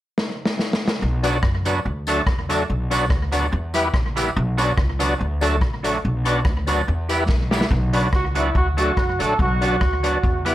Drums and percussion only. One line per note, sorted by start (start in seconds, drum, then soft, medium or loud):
0.18 snare medium
0.45 snare medium
0.59 snare medium
0.73 snare medium
0.88 snare medium
1.24 closed hi-hat medium
1.24 tambourine medium
1.43 kick loud
1.43 cross-stick loud
1.65 closed hi-hat medium
1.65 tambourine medium
2.07 closed hi-hat medium
2.07 tambourine medium
2.27 kick loud
2.27 cross-stick loud
2.50 closed hi-hat loud
2.50 tambourine medium
2.91 closed hi-hat loud
2.91 tambourine medium
3.10 kick loud
3.10 cross-stick loud
3.32 closed hi-hat medium
3.32 tambourine medium
3.74 closed hi-hat loud
3.74 tambourine medium
3.94 kick loud
3.94 cross-stick loud
4.17 closed hi-hat loud
4.17 tambourine medium
4.58 closed hi-hat loud
4.58 tambourine medium
4.78 kick loud
4.78 cross-stick loud
5.00 closed hi-hat loud
5.00 tambourine medium
5.41 closed hi-hat loud
5.41 tambourine medium
5.61 kick loud
5.61 cross-stick loud
5.84 closed hi-hat loud
5.84 tambourine medium
6.26 closed hi-hat medium
6.26 tambourine medium
6.45 kick loud
6.45 cross-stick loud
6.67 closed hi-hat medium
6.67 tambourine medium
7.09 closed hi-hat medium
7.09 tambourine medium
7.29 kick loud
7.29 snare medium
7.51 snare medium
7.51 tambourine medium
7.61 snare medium
7.71 kick loud
7.93 closed hi-hat medium
8.13 kick loud
8.13 cross-stick loud
8.35 closed hi-hat medium
8.55 kick loud
8.78 closed hi-hat loud
8.97 kick loud
8.97 cross-stick loud
9.20 closed hi-hat medium
9.39 kick loud
9.62 closed hi-hat medium
9.81 kick loud
9.81 cross-stick loud
10.04 closed hi-hat medium
10.24 kick loud
10.46 closed hi-hat medium